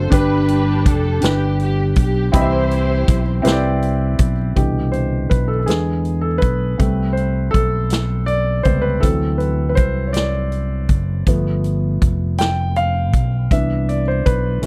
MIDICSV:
0, 0, Header, 1, 5, 480
1, 0, Start_track
1, 0, Key_signature, 0, "major"
1, 0, Tempo, 744417
1, 76, Time_signature, 6, 3, 24, 8
1, 9454, End_track
2, 0, Start_track
2, 0, Title_t, "Grand piano"
2, 0, Program_c, 0, 0
2, 0, Control_c, 0, 64, 127
2, 0, Note_on_c, 0, 50, 71
2, 0, Note_on_c, 0, 57, 65
2, 0, Note_on_c, 0, 60, 64
2, 0, Note_on_c, 0, 62, 61
2, 0, Note_on_c, 0, 66, 59
2, 0, Note_on_c, 0, 72, 80
2, 66, Note_off_c, 0, 62, 0
2, 66, Note_on_c, 0, 62, 82
2, 77, Note_on_c, 0, 67, 73
2, 78, Note_on_c, 0, 43, 66
2, 86, Control_c, 0, 64, 0
2, 87, Note_off_c, 0, 60, 0
2, 87, Note_off_c, 0, 72, 0
2, 87, Note_on_c, 0, 71, 95
2, 89, Note_off_c, 0, 50, 0
2, 90, Note_off_c, 0, 66, 0
2, 92, Note_off_c, 0, 57, 0
2, 186, Control_c, 0, 64, 127
2, 638, Note_off_c, 0, 62, 0
2, 644, Note_off_c, 0, 67, 0
2, 649, Note_off_c, 0, 71, 0
2, 768, Note_off_c, 0, 43, 0
2, 777, Note_on_c, 0, 62, 63
2, 787, Note_on_c, 0, 67, 67
2, 798, Note_on_c, 0, 71, 76
2, 1353, Note_off_c, 0, 62, 0
2, 1358, Note_off_c, 0, 67, 0
2, 1363, Note_off_c, 0, 71, 0
2, 1496, Note_on_c, 0, 60, 71
2, 1498, Note_on_c, 0, 64, 79
2, 1501, Note_on_c, 0, 67, 76
2, 1506, Note_on_c, 0, 52, 63
2, 1510, Note_on_c, 0, 83, 67
2, 1513, Note_on_c, 0, 75, 66
2, 1517, Control_c, 0, 64, 0
2, 1553, Note_off_c, 0, 75, 0
2, 1556, Note_on_c, 0, 76, 84
2, 1638, Control_c, 0, 64, 127
2, 2071, Note_off_c, 0, 60, 0
2, 2072, Note_off_c, 0, 64, 0
2, 2073, Note_off_c, 0, 67, 0
2, 2078, Note_off_c, 0, 83, 0
2, 2101, Note_off_c, 0, 76, 0
2, 2200, Note_off_c, 0, 52, 0
2, 2206, Note_on_c, 0, 60, 82
2, 2212, Note_on_c, 0, 64, 75
2, 2218, Note_on_c, 0, 67, 78
2, 2222, Note_on_c, 0, 71, 77
2, 2230, Note_on_c, 0, 72, 76
2, 2269, Note_on_c, 0, 74, 89
2, 2271, Note_off_c, 0, 72, 0
2, 2786, Note_off_c, 0, 60, 0
2, 2789, Note_off_c, 0, 64, 0
2, 2792, Note_off_c, 0, 67, 0
2, 2793, Note_off_c, 0, 71, 0
2, 2817, Note_off_c, 0, 74, 0
2, 2939, Note_on_c, 0, 50, 46
2, 2939, Note_on_c, 0, 52, 42
2, 2942, Note_on_c, 0, 67, 69
2, 2945, Note_on_c, 0, 47, 52
2, 2953, Control_c, 0, 64, 0
2, 3073, Control_c, 0, 64, 127
2, 3166, Note_off_c, 0, 67, 0
2, 3171, Note_on_c, 0, 72, 67
2, 3415, Note_on_c, 0, 71, 72
2, 3425, Note_off_c, 0, 72, 0
2, 3531, Note_off_c, 0, 71, 0
2, 3532, Note_on_c, 0, 69, 72
2, 3598, Note_off_c, 0, 69, 0
2, 3608, Note_on_c, 0, 69, 56
2, 3636, Note_off_c, 0, 50, 0
2, 3636, Note_off_c, 0, 52, 0
2, 3639, Note_off_c, 0, 47, 0
2, 3651, Note_on_c, 0, 68, 72
2, 3658, Note_on_c, 0, 50, 48
2, 3659, Note_off_c, 0, 69, 0
2, 3663, Note_on_c, 0, 56, 43
2, 3666, Note_on_c, 0, 59, 52
2, 3673, Control_c, 0, 64, 0
2, 3786, Control_c, 0, 64, 127
2, 4007, Note_on_c, 0, 69, 79
2, 4029, Note_off_c, 0, 68, 0
2, 4115, Note_on_c, 0, 71, 89
2, 4140, Note_off_c, 0, 69, 0
2, 4355, Note_off_c, 0, 50, 0
2, 4358, Note_off_c, 0, 56, 0
2, 4360, Note_off_c, 0, 59, 0
2, 4371, Note_on_c, 0, 60, 47
2, 4375, Note_on_c, 0, 55, 44
2, 4377, Note_on_c, 0, 57, 54
2, 4391, Control_c, 0, 64, 0
2, 4516, Control_c, 0, 64, 127
2, 4596, Note_on_c, 0, 72, 76
2, 4625, Note_off_c, 0, 71, 0
2, 4833, Note_off_c, 0, 72, 0
2, 4841, Note_on_c, 0, 69, 91
2, 5072, Note_off_c, 0, 60, 0
2, 5074, Note_off_c, 0, 55, 0
2, 5075, Note_off_c, 0, 57, 0
2, 5328, Note_on_c, 0, 74, 92
2, 5348, Note_off_c, 0, 69, 0
2, 5567, Note_on_c, 0, 72, 84
2, 5579, Note_on_c, 0, 48, 42
2, 5582, Note_on_c, 0, 55, 44
2, 5582, Note_on_c, 0, 59, 53
2, 5585, Note_off_c, 0, 74, 0
2, 5684, Note_on_c, 0, 71, 89
2, 5700, Note_off_c, 0, 72, 0
2, 5798, Note_off_c, 0, 48, 0
2, 5800, Note_off_c, 0, 55, 0
2, 5800, Note_off_c, 0, 59, 0
2, 5806, Note_on_c, 0, 69, 80
2, 5812, Note_on_c, 0, 52, 49
2, 5819, Note_off_c, 0, 71, 0
2, 5820, Note_on_c, 0, 54, 45
2, 5820, Note_on_c, 0, 60, 54
2, 5835, Control_c, 0, 64, 0
2, 5928, Control_c, 0, 64, 127
2, 6039, Note_off_c, 0, 69, 0
2, 6048, Note_on_c, 0, 71, 69
2, 6241, Note_off_c, 0, 71, 0
2, 6250, Note_on_c, 0, 71, 66
2, 6289, Note_on_c, 0, 72, 89
2, 6301, Note_off_c, 0, 71, 0
2, 6496, Note_on_c, 0, 73, 55
2, 6499, Note_off_c, 0, 72, 0
2, 6515, Note_off_c, 0, 52, 0
2, 6518, Note_off_c, 0, 60, 0
2, 6519, Note_off_c, 0, 54, 0
2, 6531, Note_on_c, 0, 74, 84
2, 6544, Note_off_c, 0, 73, 0
2, 7235, Note_off_c, 0, 74, 0
2, 7269, Note_on_c, 0, 53, 50
2, 7273, Note_on_c, 0, 57, 44
2, 7275, Note_on_c, 0, 59, 55
2, 7278, Control_c, 0, 64, 0
2, 7382, Control_c, 0, 64, 127
2, 7964, Note_off_c, 0, 53, 0
2, 7967, Note_off_c, 0, 57, 0
2, 7967, Note_off_c, 0, 59, 0
2, 7987, Note_on_c, 0, 79, 93
2, 8231, Note_on_c, 0, 77, 99
2, 8236, Note_off_c, 0, 79, 0
2, 8715, Note_on_c, 0, 52, 45
2, 8715, Note_on_c, 0, 76, 78
2, 8720, Note_on_c, 0, 59, 44
2, 8721, Control_c, 0, 64, 0
2, 8721, Note_on_c, 0, 62, 52
2, 8726, Note_off_c, 0, 77, 0
2, 8817, Control_c, 0, 64, 127
2, 8937, Note_off_c, 0, 76, 0
2, 8955, Note_on_c, 0, 74, 71
2, 9033, Note_off_c, 0, 52, 0
2, 9036, Note_off_c, 0, 59, 0
2, 9036, Note_off_c, 0, 62, 0
2, 9077, Note_off_c, 0, 74, 0
2, 9078, Note_on_c, 0, 72, 77
2, 9194, Note_on_c, 0, 71, 92
2, 9199, Note_off_c, 0, 72, 0
2, 9427, Note_on_c, 0, 51, 51
2, 9434, Note_on_c, 0, 57, 46
2, 9441, Control_c, 0, 64, 0
2, 9454, Note_off_c, 0, 51, 0
2, 9454, Note_off_c, 0, 57, 0
2, 9454, Note_off_c, 0, 71, 0
2, 9454, End_track
3, 0, Start_track
3, 0, Title_t, "String section"
3, 0, Program_c, 1, 48
3, 0, Note_on_c, 1, 72, 115
3, 80, Note_off_c, 1, 72, 0
3, 88, Note_on_c, 1, 62, 81
3, 91, Note_on_c, 1, 67, 75
3, 91, Note_on_c, 1, 71, 99
3, 561, Note_off_c, 1, 71, 0
3, 566, Note_on_c, 1, 69, 95
3, 772, Note_off_c, 1, 62, 0
3, 774, Note_off_c, 1, 67, 0
3, 782, Note_off_c, 1, 69, 0
3, 803, Note_on_c, 1, 67, 90
3, 1031, Note_off_c, 1, 67, 0
3, 1039, Note_on_c, 1, 67, 84
3, 1258, Note_off_c, 1, 67, 0
3, 1283, Note_on_c, 1, 67, 82
3, 1500, Note_off_c, 1, 67, 0
3, 1515, Note_on_c, 1, 67, 70
3, 1516, Note_on_c, 1, 64, 68
3, 1523, Note_on_c, 1, 72, 96
3, 2204, Note_off_c, 1, 67, 0
3, 2205, Note_off_c, 1, 64, 0
3, 2234, Note_off_c, 1, 72, 0
3, 9454, End_track
4, 0, Start_track
4, 0, Title_t, "Fingered electric bass"
4, 0, Program_c, 2, 33
4, 76, Note_on_c, 2, 31, 109
4, 556, Note_off_c, 2, 31, 0
4, 556, Note_on_c, 2, 29, 91
4, 774, Note_off_c, 2, 29, 0
4, 792, Note_on_c, 2, 31, 96
4, 1244, Note_off_c, 2, 31, 0
4, 1267, Note_on_c, 2, 35, 101
4, 1488, Note_off_c, 2, 35, 0
4, 1506, Note_on_c, 2, 36, 100
4, 1960, Note_off_c, 2, 36, 0
4, 1985, Note_on_c, 2, 35, 91
4, 2207, Note_off_c, 2, 35, 0
4, 2222, Note_on_c, 2, 36, 93
4, 2678, Note_off_c, 2, 36, 0
4, 2701, Note_on_c, 2, 35, 100
4, 2924, Note_off_c, 2, 35, 0
4, 2943, Note_on_c, 2, 36, 73
4, 3398, Note_off_c, 2, 36, 0
4, 3421, Note_on_c, 2, 35, 76
4, 3644, Note_off_c, 2, 35, 0
4, 3657, Note_on_c, 2, 40, 83
4, 4115, Note_off_c, 2, 40, 0
4, 4142, Note_on_c, 2, 35, 83
4, 4364, Note_off_c, 2, 35, 0
4, 4381, Note_on_c, 2, 36, 78
4, 4837, Note_off_c, 2, 36, 0
4, 4860, Note_on_c, 2, 35, 72
4, 5558, Note_off_c, 2, 35, 0
4, 5580, Note_on_c, 2, 37, 101
4, 5804, Note_off_c, 2, 37, 0
4, 5824, Note_on_c, 2, 38, 88
4, 6305, Note_off_c, 2, 38, 0
4, 6305, Note_on_c, 2, 36, 76
4, 7001, Note_off_c, 2, 36, 0
4, 7023, Note_on_c, 2, 30, 95
4, 7246, Note_off_c, 2, 30, 0
4, 7265, Note_on_c, 2, 31, 98
4, 7722, Note_off_c, 2, 31, 0
4, 7747, Note_on_c, 2, 29, 89
4, 8468, Note_off_c, 2, 29, 0
4, 8468, Note_on_c, 2, 35, 96
4, 8691, Note_off_c, 2, 35, 0
4, 8712, Note_on_c, 2, 36, 80
4, 9166, Note_off_c, 2, 36, 0
4, 9195, Note_on_c, 2, 35, 84
4, 9415, Note_off_c, 2, 35, 0
4, 9425, Note_on_c, 2, 35, 97
4, 9454, Note_off_c, 2, 35, 0
4, 9454, End_track
5, 0, Start_track
5, 0, Title_t, "Drums"
5, 76, Note_on_c, 9, 36, 105
5, 79, Note_on_c, 9, 42, 85
5, 140, Note_off_c, 9, 36, 0
5, 143, Note_off_c, 9, 42, 0
5, 312, Note_on_c, 9, 42, 53
5, 376, Note_off_c, 9, 42, 0
5, 554, Note_on_c, 9, 36, 101
5, 554, Note_on_c, 9, 42, 81
5, 618, Note_off_c, 9, 36, 0
5, 618, Note_off_c, 9, 42, 0
5, 784, Note_on_c, 9, 42, 85
5, 800, Note_on_c, 9, 38, 96
5, 848, Note_off_c, 9, 42, 0
5, 865, Note_off_c, 9, 38, 0
5, 1029, Note_on_c, 9, 42, 45
5, 1093, Note_off_c, 9, 42, 0
5, 1262, Note_on_c, 9, 42, 70
5, 1267, Note_on_c, 9, 36, 93
5, 1326, Note_off_c, 9, 42, 0
5, 1332, Note_off_c, 9, 36, 0
5, 1505, Note_on_c, 9, 42, 84
5, 1506, Note_on_c, 9, 36, 100
5, 1570, Note_off_c, 9, 42, 0
5, 1571, Note_off_c, 9, 36, 0
5, 1749, Note_on_c, 9, 42, 54
5, 1814, Note_off_c, 9, 42, 0
5, 1986, Note_on_c, 9, 42, 78
5, 1987, Note_on_c, 9, 36, 102
5, 2050, Note_off_c, 9, 42, 0
5, 2051, Note_off_c, 9, 36, 0
5, 2222, Note_on_c, 9, 42, 84
5, 2239, Note_on_c, 9, 38, 99
5, 2287, Note_off_c, 9, 42, 0
5, 2303, Note_off_c, 9, 38, 0
5, 2466, Note_on_c, 9, 42, 45
5, 2531, Note_off_c, 9, 42, 0
5, 2699, Note_on_c, 9, 42, 69
5, 2703, Note_on_c, 9, 36, 96
5, 2764, Note_off_c, 9, 42, 0
5, 2767, Note_off_c, 9, 36, 0
5, 2943, Note_on_c, 9, 36, 84
5, 2943, Note_on_c, 9, 42, 61
5, 3008, Note_off_c, 9, 36, 0
5, 3008, Note_off_c, 9, 42, 0
5, 3181, Note_on_c, 9, 42, 44
5, 3245, Note_off_c, 9, 42, 0
5, 3424, Note_on_c, 9, 36, 80
5, 3427, Note_on_c, 9, 42, 49
5, 3488, Note_off_c, 9, 36, 0
5, 3492, Note_off_c, 9, 42, 0
5, 3659, Note_on_c, 9, 42, 75
5, 3675, Note_on_c, 9, 38, 75
5, 3723, Note_off_c, 9, 42, 0
5, 3740, Note_off_c, 9, 38, 0
5, 3900, Note_on_c, 9, 42, 38
5, 3964, Note_off_c, 9, 42, 0
5, 4137, Note_on_c, 9, 42, 45
5, 4142, Note_on_c, 9, 36, 82
5, 4202, Note_off_c, 9, 42, 0
5, 4206, Note_off_c, 9, 36, 0
5, 4382, Note_on_c, 9, 36, 94
5, 4382, Note_on_c, 9, 42, 67
5, 4446, Note_off_c, 9, 36, 0
5, 4447, Note_off_c, 9, 42, 0
5, 4625, Note_on_c, 9, 42, 48
5, 4689, Note_off_c, 9, 42, 0
5, 4863, Note_on_c, 9, 36, 85
5, 4864, Note_on_c, 9, 42, 50
5, 4928, Note_off_c, 9, 36, 0
5, 4928, Note_off_c, 9, 42, 0
5, 5094, Note_on_c, 9, 42, 80
5, 5111, Note_on_c, 9, 38, 85
5, 5159, Note_off_c, 9, 42, 0
5, 5175, Note_off_c, 9, 38, 0
5, 5338, Note_on_c, 9, 42, 45
5, 5402, Note_off_c, 9, 42, 0
5, 5575, Note_on_c, 9, 42, 45
5, 5581, Note_on_c, 9, 36, 84
5, 5640, Note_off_c, 9, 42, 0
5, 5645, Note_off_c, 9, 36, 0
5, 5822, Note_on_c, 9, 36, 82
5, 5823, Note_on_c, 9, 42, 73
5, 5887, Note_off_c, 9, 36, 0
5, 5887, Note_off_c, 9, 42, 0
5, 6062, Note_on_c, 9, 42, 45
5, 6127, Note_off_c, 9, 42, 0
5, 6299, Note_on_c, 9, 42, 52
5, 6303, Note_on_c, 9, 36, 89
5, 6364, Note_off_c, 9, 42, 0
5, 6367, Note_off_c, 9, 36, 0
5, 6537, Note_on_c, 9, 42, 83
5, 6554, Note_on_c, 9, 38, 83
5, 6602, Note_off_c, 9, 42, 0
5, 6619, Note_off_c, 9, 38, 0
5, 6782, Note_on_c, 9, 42, 41
5, 6847, Note_off_c, 9, 42, 0
5, 7020, Note_on_c, 9, 42, 50
5, 7023, Note_on_c, 9, 36, 85
5, 7085, Note_off_c, 9, 42, 0
5, 7088, Note_off_c, 9, 36, 0
5, 7264, Note_on_c, 9, 42, 69
5, 7265, Note_on_c, 9, 36, 89
5, 7328, Note_off_c, 9, 42, 0
5, 7329, Note_off_c, 9, 36, 0
5, 7506, Note_on_c, 9, 42, 43
5, 7570, Note_off_c, 9, 42, 0
5, 7749, Note_on_c, 9, 36, 91
5, 7749, Note_on_c, 9, 42, 57
5, 7814, Note_off_c, 9, 36, 0
5, 7814, Note_off_c, 9, 42, 0
5, 7984, Note_on_c, 9, 42, 79
5, 8001, Note_on_c, 9, 38, 95
5, 8049, Note_off_c, 9, 42, 0
5, 8065, Note_off_c, 9, 38, 0
5, 8228, Note_on_c, 9, 42, 44
5, 8292, Note_off_c, 9, 42, 0
5, 8467, Note_on_c, 9, 42, 46
5, 8470, Note_on_c, 9, 36, 80
5, 8532, Note_off_c, 9, 42, 0
5, 8534, Note_off_c, 9, 36, 0
5, 8711, Note_on_c, 9, 36, 89
5, 8712, Note_on_c, 9, 42, 64
5, 8776, Note_off_c, 9, 36, 0
5, 8777, Note_off_c, 9, 42, 0
5, 8956, Note_on_c, 9, 42, 47
5, 9021, Note_off_c, 9, 42, 0
5, 9196, Note_on_c, 9, 36, 93
5, 9198, Note_on_c, 9, 42, 54
5, 9261, Note_off_c, 9, 36, 0
5, 9263, Note_off_c, 9, 42, 0
5, 9431, Note_on_c, 9, 42, 81
5, 9454, Note_off_c, 9, 42, 0
5, 9454, End_track
0, 0, End_of_file